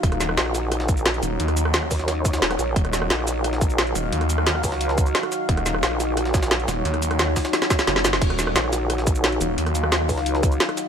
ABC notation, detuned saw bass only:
X:1
M:4/4
L:1/8
Q:1/4=176
K:Ebm
V:1 name="Detuned saw bass" clef=bass
E,,,2 z4 z E,,, | E,,3 z4 z | E,,,2 z4 z E,,, | E,,3 z4 z |
E,,,2 z4 z E,,, | E,,3 z3 G,,,2 | E,,,2 z4 z E,,, | E,,3 z4 z |]